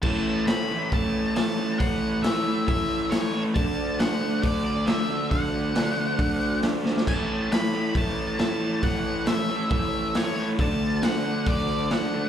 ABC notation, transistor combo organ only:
X:1
M:4/4
L:1/8
Q:1/4=136
K:A
V:1 name="Transistor combo organ"
[EAc]8- | [EAc]8 | [FAd]8- | [FAd]8 |
[EAc]8- | [EAc]8 | [FAd]8 |]